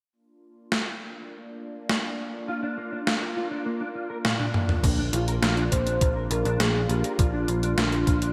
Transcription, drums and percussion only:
0, 0, Header, 1, 2, 480
1, 0, Start_track
1, 0, Tempo, 588235
1, 106, Time_signature, 4, 2, 24, 8
1, 6796, End_track
2, 0, Start_track
2, 0, Title_t, "Drums"
2, 587, Note_on_c, 9, 38, 110
2, 668, Note_off_c, 9, 38, 0
2, 1546, Note_on_c, 9, 38, 108
2, 1628, Note_off_c, 9, 38, 0
2, 2506, Note_on_c, 9, 38, 118
2, 2588, Note_off_c, 9, 38, 0
2, 3466, Note_on_c, 9, 38, 115
2, 3466, Note_on_c, 9, 48, 58
2, 3548, Note_off_c, 9, 38, 0
2, 3548, Note_off_c, 9, 48, 0
2, 3587, Note_on_c, 9, 48, 58
2, 3669, Note_off_c, 9, 48, 0
2, 3707, Note_on_c, 9, 47, 77
2, 3789, Note_off_c, 9, 47, 0
2, 3827, Note_on_c, 9, 45, 76
2, 3909, Note_off_c, 9, 45, 0
2, 3946, Note_on_c, 9, 36, 117
2, 3948, Note_on_c, 9, 42, 77
2, 3948, Note_on_c, 9, 49, 87
2, 4028, Note_off_c, 9, 36, 0
2, 4030, Note_off_c, 9, 42, 0
2, 4030, Note_off_c, 9, 49, 0
2, 4187, Note_on_c, 9, 42, 76
2, 4269, Note_off_c, 9, 42, 0
2, 4307, Note_on_c, 9, 42, 54
2, 4389, Note_off_c, 9, 42, 0
2, 4428, Note_on_c, 9, 38, 116
2, 4428, Note_on_c, 9, 42, 82
2, 4509, Note_off_c, 9, 38, 0
2, 4509, Note_off_c, 9, 42, 0
2, 4548, Note_on_c, 9, 42, 37
2, 4629, Note_off_c, 9, 42, 0
2, 4666, Note_on_c, 9, 36, 60
2, 4668, Note_on_c, 9, 42, 79
2, 4748, Note_off_c, 9, 36, 0
2, 4750, Note_off_c, 9, 42, 0
2, 4787, Note_on_c, 9, 42, 54
2, 4869, Note_off_c, 9, 42, 0
2, 4906, Note_on_c, 9, 36, 111
2, 4907, Note_on_c, 9, 42, 80
2, 4988, Note_off_c, 9, 36, 0
2, 4988, Note_off_c, 9, 42, 0
2, 5147, Note_on_c, 9, 42, 80
2, 5229, Note_off_c, 9, 42, 0
2, 5267, Note_on_c, 9, 42, 54
2, 5348, Note_off_c, 9, 42, 0
2, 5386, Note_on_c, 9, 38, 115
2, 5386, Note_on_c, 9, 42, 77
2, 5468, Note_off_c, 9, 38, 0
2, 5468, Note_off_c, 9, 42, 0
2, 5626, Note_on_c, 9, 42, 77
2, 5708, Note_off_c, 9, 42, 0
2, 5746, Note_on_c, 9, 42, 52
2, 5828, Note_off_c, 9, 42, 0
2, 5866, Note_on_c, 9, 36, 123
2, 5866, Note_on_c, 9, 42, 80
2, 5948, Note_off_c, 9, 36, 0
2, 5948, Note_off_c, 9, 42, 0
2, 6106, Note_on_c, 9, 42, 79
2, 6187, Note_off_c, 9, 42, 0
2, 6227, Note_on_c, 9, 42, 53
2, 6308, Note_off_c, 9, 42, 0
2, 6346, Note_on_c, 9, 38, 122
2, 6346, Note_on_c, 9, 42, 82
2, 6428, Note_off_c, 9, 38, 0
2, 6428, Note_off_c, 9, 42, 0
2, 6466, Note_on_c, 9, 42, 38
2, 6548, Note_off_c, 9, 42, 0
2, 6586, Note_on_c, 9, 36, 104
2, 6587, Note_on_c, 9, 42, 82
2, 6668, Note_off_c, 9, 36, 0
2, 6668, Note_off_c, 9, 42, 0
2, 6706, Note_on_c, 9, 42, 54
2, 6788, Note_off_c, 9, 42, 0
2, 6796, End_track
0, 0, End_of_file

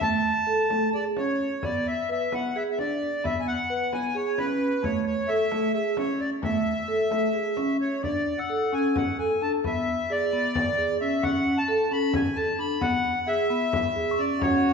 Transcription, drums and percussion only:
0, 0, Header, 1, 2, 480
1, 0, Start_track
1, 0, Tempo, 458716
1, 13, Time_signature, 7, 3, 24, 8
1, 9852, Tempo, 453858
1, 15476, End_track
2, 0, Start_track
2, 0, Title_t, "Frame drum"
2, 11, Note_on_c, 9, 64, 48
2, 116, Note_off_c, 9, 64, 0
2, 736, Note_on_c, 9, 64, 38
2, 841, Note_off_c, 9, 64, 0
2, 973, Note_on_c, 9, 64, 15
2, 1078, Note_off_c, 9, 64, 0
2, 1221, Note_on_c, 9, 64, 41
2, 1325, Note_off_c, 9, 64, 0
2, 1469, Note_on_c, 9, 64, 17
2, 1574, Note_off_c, 9, 64, 0
2, 1701, Note_on_c, 9, 64, 46
2, 1806, Note_off_c, 9, 64, 0
2, 2432, Note_on_c, 9, 64, 45
2, 2537, Note_off_c, 9, 64, 0
2, 2917, Note_on_c, 9, 64, 39
2, 3021, Note_off_c, 9, 64, 0
2, 3160, Note_on_c, 9, 64, 16
2, 3265, Note_off_c, 9, 64, 0
2, 3401, Note_on_c, 9, 64, 47
2, 3505, Note_off_c, 9, 64, 0
2, 4111, Note_on_c, 9, 64, 39
2, 4216, Note_off_c, 9, 64, 0
2, 4586, Note_on_c, 9, 64, 42
2, 4691, Note_off_c, 9, 64, 0
2, 4822, Note_on_c, 9, 64, 14
2, 4927, Note_off_c, 9, 64, 0
2, 5062, Note_on_c, 9, 64, 47
2, 5167, Note_off_c, 9, 64, 0
2, 5773, Note_on_c, 9, 64, 40
2, 5878, Note_off_c, 9, 64, 0
2, 6247, Note_on_c, 9, 64, 46
2, 6351, Note_off_c, 9, 64, 0
2, 6488, Note_on_c, 9, 64, 16
2, 6593, Note_off_c, 9, 64, 0
2, 6726, Note_on_c, 9, 64, 52
2, 6831, Note_off_c, 9, 64, 0
2, 6966, Note_on_c, 9, 64, 18
2, 7071, Note_off_c, 9, 64, 0
2, 7446, Note_on_c, 9, 64, 41
2, 7551, Note_off_c, 9, 64, 0
2, 7921, Note_on_c, 9, 64, 41
2, 8025, Note_off_c, 9, 64, 0
2, 8409, Note_on_c, 9, 64, 42
2, 8514, Note_off_c, 9, 64, 0
2, 9135, Note_on_c, 9, 64, 18
2, 9239, Note_off_c, 9, 64, 0
2, 9372, Note_on_c, 9, 64, 55
2, 9477, Note_off_c, 9, 64, 0
2, 10092, Note_on_c, 9, 64, 48
2, 10198, Note_off_c, 9, 64, 0
2, 10818, Note_on_c, 9, 64, 18
2, 10924, Note_off_c, 9, 64, 0
2, 11056, Note_on_c, 9, 64, 56
2, 11162, Note_off_c, 9, 64, 0
2, 11776, Note_on_c, 9, 64, 47
2, 11881, Note_off_c, 9, 64, 0
2, 12491, Note_on_c, 9, 64, 17
2, 12597, Note_off_c, 9, 64, 0
2, 12728, Note_on_c, 9, 64, 58
2, 12834, Note_off_c, 9, 64, 0
2, 13447, Note_on_c, 9, 64, 53
2, 13552, Note_off_c, 9, 64, 0
2, 13935, Note_on_c, 9, 64, 18
2, 14041, Note_off_c, 9, 64, 0
2, 14415, Note_on_c, 9, 64, 56
2, 14521, Note_off_c, 9, 64, 0
2, 14899, Note_on_c, 9, 64, 16
2, 15005, Note_off_c, 9, 64, 0
2, 15139, Note_on_c, 9, 64, 53
2, 15245, Note_off_c, 9, 64, 0
2, 15476, End_track
0, 0, End_of_file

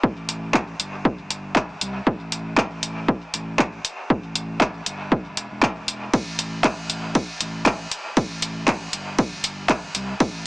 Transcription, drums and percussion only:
0, 0, Header, 1, 2, 480
1, 0, Start_track
1, 0, Key_signature, 0, "minor"
1, 0, Tempo, 508475
1, 32, Time_signature, 4, 2, 24, 8
1, 9882, End_track
2, 0, Start_track
2, 0, Title_t, "Drums"
2, 32, Note_on_c, 9, 36, 105
2, 127, Note_off_c, 9, 36, 0
2, 272, Note_on_c, 9, 42, 80
2, 366, Note_off_c, 9, 42, 0
2, 512, Note_on_c, 9, 36, 116
2, 513, Note_on_c, 9, 39, 77
2, 607, Note_off_c, 9, 36, 0
2, 607, Note_off_c, 9, 39, 0
2, 752, Note_on_c, 9, 42, 80
2, 847, Note_off_c, 9, 42, 0
2, 992, Note_on_c, 9, 36, 115
2, 1086, Note_off_c, 9, 36, 0
2, 1232, Note_on_c, 9, 42, 81
2, 1326, Note_off_c, 9, 42, 0
2, 1471, Note_on_c, 9, 39, 75
2, 1472, Note_on_c, 9, 36, 116
2, 1566, Note_off_c, 9, 36, 0
2, 1566, Note_off_c, 9, 39, 0
2, 1711, Note_on_c, 9, 42, 81
2, 1806, Note_off_c, 9, 42, 0
2, 1952, Note_on_c, 9, 36, 108
2, 2046, Note_off_c, 9, 36, 0
2, 2191, Note_on_c, 9, 42, 78
2, 2286, Note_off_c, 9, 42, 0
2, 2431, Note_on_c, 9, 36, 113
2, 2431, Note_on_c, 9, 39, 77
2, 2526, Note_off_c, 9, 36, 0
2, 2526, Note_off_c, 9, 39, 0
2, 2670, Note_on_c, 9, 42, 77
2, 2765, Note_off_c, 9, 42, 0
2, 2911, Note_on_c, 9, 36, 111
2, 3006, Note_off_c, 9, 36, 0
2, 3151, Note_on_c, 9, 42, 81
2, 3246, Note_off_c, 9, 42, 0
2, 3391, Note_on_c, 9, 39, 76
2, 3392, Note_on_c, 9, 36, 116
2, 3486, Note_off_c, 9, 36, 0
2, 3486, Note_off_c, 9, 39, 0
2, 3631, Note_on_c, 9, 42, 77
2, 3726, Note_off_c, 9, 42, 0
2, 3872, Note_on_c, 9, 36, 112
2, 3966, Note_off_c, 9, 36, 0
2, 4111, Note_on_c, 9, 42, 84
2, 4205, Note_off_c, 9, 42, 0
2, 4351, Note_on_c, 9, 39, 83
2, 4352, Note_on_c, 9, 36, 118
2, 4445, Note_off_c, 9, 39, 0
2, 4446, Note_off_c, 9, 36, 0
2, 4591, Note_on_c, 9, 42, 76
2, 4685, Note_off_c, 9, 42, 0
2, 4831, Note_on_c, 9, 36, 118
2, 4926, Note_off_c, 9, 36, 0
2, 5071, Note_on_c, 9, 42, 82
2, 5166, Note_off_c, 9, 42, 0
2, 5311, Note_on_c, 9, 39, 77
2, 5312, Note_on_c, 9, 36, 117
2, 5405, Note_off_c, 9, 39, 0
2, 5406, Note_off_c, 9, 36, 0
2, 5552, Note_on_c, 9, 42, 79
2, 5646, Note_off_c, 9, 42, 0
2, 5792, Note_on_c, 9, 36, 116
2, 5792, Note_on_c, 9, 51, 58
2, 5886, Note_off_c, 9, 36, 0
2, 5886, Note_off_c, 9, 51, 0
2, 6031, Note_on_c, 9, 42, 80
2, 6126, Note_off_c, 9, 42, 0
2, 6271, Note_on_c, 9, 39, 87
2, 6271, Note_on_c, 9, 51, 61
2, 6272, Note_on_c, 9, 36, 122
2, 6365, Note_off_c, 9, 39, 0
2, 6365, Note_off_c, 9, 51, 0
2, 6366, Note_off_c, 9, 36, 0
2, 6511, Note_on_c, 9, 42, 81
2, 6605, Note_off_c, 9, 42, 0
2, 6750, Note_on_c, 9, 51, 58
2, 6752, Note_on_c, 9, 36, 120
2, 6845, Note_off_c, 9, 51, 0
2, 6846, Note_off_c, 9, 36, 0
2, 6991, Note_on_c, 9, 42, 84
2, 7085, Note_off_c, 9, 42, 0
2, 7232, Note_on_c, 9, 36, 122
2, 7232, Note_on_c, 9, 39, 84
2, 7232, Note_on_c, 9, 51, 58
2, 7326, Note_off_c, 9, 36, 0
2, 7326, Note_off_c, 9, 39, 0
2, 7326, Note_off_c, 9, 51, 0
2, 7472, Note_on_c, 9, 42, 83
2, 7566, Note_off_c, 9, 42, 0
2, 7711, Note_on_c, 9, 51, 57
2, 7712, Note_on_c, 9, 36, 119
2, 7805, Note_off_c, 9, 51, 0
2, 7806, Note_off_c, 9, 36, 0
2, 7951, Note_on_c, 9, 42, 88
2, 8046, Note_off_c, 9, 42, 0
2, 8192, Note_on_c, 9, 36, 127
2, 8192, Note_on_c, 9, 39, 84
2, 8192, Note_on_c, 9, 51, 60
2, 8286, Note_off_c, 9, 36, 0
2, 8286, Note_off_c, 9, 39, 0
2, 8286, Note_off_c, 9, 51, 0
2, 8431, Note_on_c, 9, 42, 86
2, 8525, Note_off_c, 9, 42, 0
2, 8671, Note_on_c, 9, 51, 56
2, 8672, Note_on_c, 9, 36, 124
2, 8765, Note_off_c, 9, 51, 0
2, 8766, Note_off_c, 9, 36, 0
2, 8911, Note_on_c, 9, 42, 92
2, 9005, Note_off_c, 9, 42, 0
2, 9151, Note_on_c, 9, 39, 82
2, 9151, Note_on_c, 9, 51, 54
2, 9152, Note_on_c, 9, 36, 127
2, 9246, Note_off_c, 9, 36, 0
2, 9246, Note_off_c, 9, 39, 0
2, 9246, Note_off_c, 9, 51, 0
2, 9391, Note_on_c, 9, 42, 86
2, 9485, Note_off_c, 9, 42, 0
2, 9631, Note_on_c, 9, 51, 53
2, 9632, Note_on_c, 9, 36, 123
2, 9725, Note_off_c, 9, 51, 0
2, 9726, Note_off_c, 9, 36, 0
2, 9882, End_track
0, 0, End_of_file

